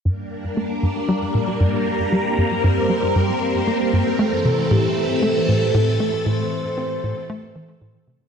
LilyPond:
<<
  \new Staff \with { instrumentName = "Soft synth lead" } { \time 4/4 \key g \dorian \tempo 4 = 116 r1 | r1 | a'4 g'4 a'2 | c''2. r4 | }
  \new Staff \with { instrumentName = "String machine" } { \time 4/4 \key g \dorian << { <g bes bes'>1~ | <g bes bes'>1 | <e a a'>1~ | <e a a'>1 | } \\ { d'1 | c'1~ | c'1~ | c'1 | } >> }
  \new Staff \with { instrumentName = "Analog synth bass" } { \clef bass \time 4/4 \key g \dorian g,8 r8 bes8 g,8 g8 bes,8 g,8 r8 | g8 g,8 g,8 g8 g,8 r8 bes8 g,8 | a8 c8 a,8 r8 a8 a,8 a,8 a8 | a,8 r8 c'8 a,8 a8 e8 a,8 c8 | }
>>